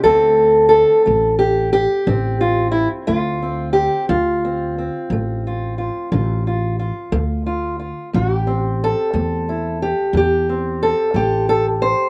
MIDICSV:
0, 0, Header, 1, 3, 480
1, 0, Start_track
1, 0, Tempo, 672646
1, 33, Time_signature, 12, 3, 24, 8
1, 8630, End_track
2, 0, Start_track
2, 0, Title_t, "Steel-string acoustic guitar"
2, 0, Program_c, 0, 25
2, 25, Note_on_c, 0, 69, 100
2, 26, Note_on_c, 0, 50, 64
2, 35, Note_on_c, 0, 57, 44
2, 36, Note_on_c, 0, 60, 45
2, 463, Note_off_c, 0, 50, 0
2, 482, Note_off_c, 0, 69, 0
2, 491, Note_on_c, 0, 69, 91
2, 751, Note_off_c, 0, 57, 0
2, 754, Note_on_c, 0, 57, 57
2, 984, Note_off_c, 0, 69, 0
2, 989, Note_on_c, 0, 67, 89
2, 1188, Note_off_c, 0, 57, 0
2, 1224, Note_off_c, 0, 67, 0
2, 1232, Note_on_c, 0, 67, 95
2, 1477, Note_on_c, 0, 50, 72
2, 1482, Note_off_c, 0, 60, 0
2, 1484, Note_on_c, 0, 60, 50
2, 1714, Note_off_c, 0, 67, 0
2, 1717, Note_on_c, 0, 65, 80
2, 1911, Note_off_c, 0, 50, 0
2, 1934, Note_off_c, 0, 65, 0
2, 1937, Note_on_c, 0, 64, 75
2, 2051, Note_off_c, 0, 64, 0
2, 2191, Note_on_c, 0, 65, 91
2, 2194, Note_on_c, 0, 57, 62
2, 2441, Note_off_c, 0, 60, 0
2, 2444, Note_on_c, 0, 60, 44
2, 2630, Note_off_c, 0, 57, 0
2, 2658, Note_off_c, 0, 65, 0
2, 2661, Note_on_c, 0, 67, 81
2, 2912, Note_off_c, 0, 67, 0
2, 2919, Note_on_c, 0, 65, 80
2, 2925, Note_on_c, 0, 50, 70
2, 2946, Note_off_c, 0, 60, 0
2, 3173, Note_on_c, 0, 60, 44
2, 3356, Note_off_c, 0, 50, 0
2, 3410, Note_off_c, 0, 60, 0
2, 3413, Note_on_c, 0, 60, 38
2, 3656, Note_on_c, 0, 57, 63
2, 3882, Note_off_c, 0, 65, 0
2, 3902, Note_on_c, 0, 65, 47
2, 4082, Note_off_c, 0, 57, 0
2, 4116, Note_off_c, 0, 65, 0
2, 4124, Note_on_c, 0, 65, 42
2, 4364, Note_off_c, 0, 65, 0
2, 4367, Note_on_c, 0, 50, 77
2, 4375, Note_on_c, 0, 65, 49
2, 4610, Note_off_c, 0, 65, 0
2, 4617, Note_on_c, 0, 65, 44
2, 4798, Note_off_c, 0, 50, 0
2, 4839, Note_off_c, 0, 65, 0
2, 4848, Note_on_c, 0, 65, 47
2, 5082, Note_on_c, 0, 57, 64
2, 5318, Note_off_c, 0, 65, 0
2, 5326, Note_on_c, 0, 65, 49
2, 5515, Note_off_c, 0, 57, 0
2, 5554, Note_off_c, 0, 65, 0
2, 5562, Note_on_c, 0, 65, 38
2, 5774, Note_off_c, 0, 65, 0
2, 5804, Note_on_c, 0, 45, 65
2, 5815, Note_off_c, 0, 60, 0
2, 5818, Note_on_c, 0, 66, 80
2, 5961, Note_off_c, 0, 66, 0
2, 5961, Note_on_c, 0, 67, 80
2, 6044, Note_on_c, 0, 60, 45
2, 6235, Note_off_c, 0, 45, 0
2, 6307, Note_on_c, 0, 69, 91
2, 6526, Note_on_c, 0, 57, 60
2, 6768, Note_off_c, 0, 67, 0
2, 6771, Note_on_c, 0, 64, 51
2, 6955, Note_off_c, 0, 57, 0
2, 7007, Note_off_c, 0, 64, 0
2, 7010, Note_on_c, 0, 67, 86
2, 7239, Note_on_c, 0, 45, 77
2, 7245, Note_off_c, 0, 67, 0
2, 7259, Note_on_c, 0, 67, 85
2, 7485, Note_off_c, 0, 60, 0
2, 7488, Note_on_c, 0, 60, 42
2, 7492, Note_off_c, 0, 69, 0
2, 7671, Note_off_c, 0, 45, 0
2, 7725, Note_on_c, 0, 69, 88
2, 7955, Note_off_c, 0, 67, 0
2, 7955, Note_on_c, 0, 57, 58
2, 7964, Note_on_c, 0, 67, 98
2, 8191, Note_off_c, 0, 69, 0
2, 8200, Note_on_c, 0, 69, 93
2, 8314, Note_off_c, 0, 69, 0
2, 8387, Note_off_c, 0, 57, 0
2, 8434, Note_on_c, 0, 72, 98
2, 8630, Note_off_c, 0, 60, 0
2, 8630, Note_off_c, 0, 67, 0
2, 8630, Note_off_c, 0, 72, 0
2, 8630, End_track
3, 0, Start_track
3, 0, Title_t, "Upright bass"
3, 0, Program_c, 1, 32
3, 29, Note_on_c, 1, 38, 86
3, 591, Note_off_c, 1, 38, 0
3, 763, Note_on_c, 1, 33, 82
3, 1320, Note_off_c, 1, 33, 0
3, 1476, Note_on_c, 1, 33, 90
3, 2037, Note_off_c, 1, 33, 0
3, 2197, Note_on_c, 1, 38, 88
3, 2757, Note_off_c, 1, 38, 0
3, 2919, Note_on_c, 1, 38, 92
3, 3479, Note_off_c, 1, 38, 0
3, 3640, Note_on_c, 1, 33, 82
3, 4200, Note_off_c, 1, 33, 0
3, 4366, Note_on_c, 1, 33, 92
3, 4923, Note_off_c, 1, 33, 0
3, 5082, Note_on_c, 1, 38, 91
3, 5640, Note_off_c, 1, 38, 0
3, 5811, Note_on_c, 1, 33, 92
3, 6365, Note_off_c, 1, 33, 0
3, 6519, Note_on_c, 1, 40, 84
3, 7077, Note_off_c, 1, 40, 0
3, 7230, Note_on_c, 1, 40, 84
3, 7791, Note_off_c, 1, 40, 0
3, 7951, Note_on_c, 1, 33, 84
3, 8510, Note_off_c, 1, 33, 0
3, 8630, End_track
0, 0, End_of_file